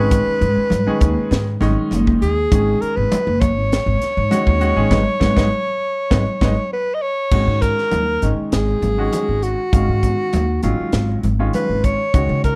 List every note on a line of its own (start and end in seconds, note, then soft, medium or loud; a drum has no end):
0.00 0.21 G#1 medium
0.00 0.66 D#3 medium
0.00 0.66 G#3 medium
0.00 0.66 C#4 medium
0.00 0.66 G#4 medium
0.00 1.62 B4 medium
0.11 kick loud
0.11 closed hi-hat medium
0.11 muted conga soft
0.27 muted upright bass stroke soft
0.41 0.54 G#2 medium
0.41 closed hi-hat medium
0.57 muted upright bass stroke soft
0.70 0.84 G#2 medium
0.70 closed hi-hat medium
0.70 muted conga soft
0.70 high conga medium
0.87 1.45 D#3 medium
0.87 1.45 G#3 medium
0.87 1.45 C#4 medium
0.87 1.45 G#4 medium
0.87 muted upright bass stroke soft
1.01 1.14 D#2 loud
1.01 kick medium
1.01 closed hi-hat medium
1.01 high conga medium
1.17 muted upright bass stroke soft
1.31 1.55 G#2 medium
1.31 snare medium
1.31 closed hi-hat medium
1.31 muted conga soft
1.31 low conga medium
1.61 1.74 G#1 medium
1.61 2.31 D#3 medium
1.61 2.31 G#3 medium
1.61 2.32 C#4 medium
1.61 2.32 D#4 loud
1.61 snare soft
1.61 closed hi-hat medium
1.61 muted conga soft
1.61 high conga medium
1.61 low conga medium
1.91 2.15 F#1 medium
1.91 closed hi-hat medium
1.91 high conga medium
2.07 kick medium
2.21 2.45 D#2 medium
2.21 2.83 G#4 medium
2.21 closed hi-hat medium
2.51 2.75 G#1 medium
2.51 3.45 D#3 medium
2.51 3.45 G#3 medium
2.51 3.45 C#4 medium
2.51 3.45 G#4 medium
2.51 kick loud
2.51 closed hi-hat medium
2.51 muted conga soft
2.81 2.97 A#4 medium
2.81 muted upright bass stroke soft
2.81 closed hi-hat soft
2.96 3.09 G#1 medium
2.96 3.42 B4 medium
3.12 muted upright bass stroke soft
3.12 closed hi-hat medium
3.12 muted conga soft
3.12 high conga medium
3.27 3.56 F#1 medium
3.40 6.72 C#5 loud
3.40 kick medium
3.40 closed hi-hat medium
3.40 high conga medium
3.56 3.80 G#1 medium
3.71 snare medium
3.71 closed hi-hat medium
3.71 muted conga soft
3.86 3.98 G#1 medium
4.01 muted upright bass stroke soft
4.01 snare soft
4.01 closed hi-hat medium
4.01 muted conga soft
4.17 4.29 G#2 medium
4.30 4.55 D#3 medium
4.30 4.55 G#3 medium
4.30 4.55 C#4 medium
4.30 4.55 F#4 medium
4.30 closed hi-hat medium
4.30 high conga medium
4.47 4.71 D#2 medium
4.47 kick medium
4.60 4.73 D#3 medium
4.60 4.73 G#3 medium
4.60 4.73 C#4 medium
4.60 4.73 F#4 medium
4.60 closed hi-hat medium
4.76 4.88 G#1 medium
4.76 4.91 D#3 medium
4.76 4.89 G#3 medium
4.76 4.91 C#4 medium
4.76 4.91 G#4 medium
4.91 5.03 G#1 loud
4.91 5.01 G#3 medium
4.91 5.01 B3 medium
4.91 5.01 D#4 medium
4.91 kick medium
4.91 snare medium
4.91 high conga loud
5.20 5.33 G#1 medium
5.20 5.31 G#3 medium
5.20 5.31 B3 medium
5.20 5.31 D#4 medium
5.20 kick medium
5.20 snare medium
5.20 high conga medium
5.36 5.48 G#1 medium
5.36 5.46 G#3 medium
5.36 5.46 B3 medium
5.36 5.46 D#4 medium
5.36 kick medium
5.36 snare medium
5.36 high conga loud
6.10 6.23 G#1 medium
6.10 6.21 G#3 medium
6.10 6.21 B3 medium
6.10 6.21 D#4 medium
6.10 kick medium
6.10 snare medium
6.10 high conga medium
6.41 6.53 G#1 medium
6.41 6.52 G#3 medium
6.41 6.52 B3 medium
6.41 6.52 D#4 medium
6.41 kick medium
6.41 snare medium
6.41 high conga medium
6.73 6.96 B4 medium
6.94 7.03 D#5 medium
7.02 7.63 C#5 loud
7.31 7.44 G#1 medium
7.31 8.03 D#3 medium
7.31 8.03 G#3 medium
7.31 8.03 C#4 medium
7.31 8.03 F#4 medium
7.31 kick loud
7.31 crash medium
7.31 muted conga soft
7.47 7.71 G#2 medium
7.62 8.36 A#4 loud
7.62 kick medium
7.62 closed hi-hat soft
7.78 snare soft
7.91 8.16 D#2 medium
7.91 closed hi-hat medium
7.91 high conga medium
8.22 8.35 G#1 medium
8.22 8.81 D#3 medium
8.22 8.81 G#3 medium
8.22 8.81 C#4 medium
8.22 8.81 D#4 medium
8.22 closed hi-hat medium
8.22 muted conga soft
8.38 muted upright bass stroke soft
8.52 8.77 G#1 medium
8.52 9.44 G#4 medium
8.52 snare medium
8.52 closed hi-hat medium
8.52 muted conga soft
8.82 9.06 G#1 medium
8.82 closed hi-hat medium
8.82 muted conga soft
8.82 high conga medium
8.98 9.57 D#3 medium
8.98 9.57 G#3 medium
8.98 9.57 C#4 medium
8.98 9.57 F#4 medium
9.13 closed hi-hat medium
9.13 high conga medium
9.29 9.53 G#1 medium
9.42 10.63 F#4 medium
9.42 closed hi-hat medium
9.73 9.85 G#1 medium
9.73 10.44 D#3 medium
9.73 10.44 G#3 medium
9.73 10.44 C#4 medium
9.73 10.44 F5 medium
9.73 kick loud
9.73 closed hi-hat medium
9.73 muted conga soft
9.89 10.13 G#2 medium
10.03 kick medium
10.03 closed hi-hat medium
10.03 low conga medium
10.33 10.58 D#2 medium
10.33 closed hi-hat medium
10.33 high conga medium
10.63 10.76 G#1 medium
10.63 11.22 D#3 medium
10.63 11.22 F#3 medium
10.63 11.22 G#3 medium
10.63 11.22 C#4 medium
10.63 11.20 F4 medium
10.63 closed hi-hat medium
10.63 muted conga soft
10.79 muted upright bass stroke soft
10.92 11.17 G#1 medium
10.92 snare medium
10.92 closed hi-hat medium
10.92 muted conga soft
11.23 11.48 G#1 medium
11.23 closed hi-hat medium
11.23 muted conga soft
11.23 high conga medium
11.39 11.98 D#3 medium
11.39 11.98 G#3 medium
11.39 11.98 C#4 medium
11.39 11.98 F4 medium
11.53 11.86 B4 medium
11.53 closed hi-hat medium
11.53 high conga medium
11.69 11.94 G#1 medium
11.84 12.44 C#5 loud
11.84 kick medium
11.84 closed hi-hat soft
12.14 12.27 C#2 medium
12.14 12.55 D#3 medium
12.14 12.55 G#3 medium
12.14 12.55 C#4 medium
12.14 12.55 F#4 medium
12.14 kick loud
12.14 closed hi-hat medium
12.29 12.54 C#3 medium
12.44 12.55 A#4 loud
12.44 kick medium
12.44 closed hi-hat soft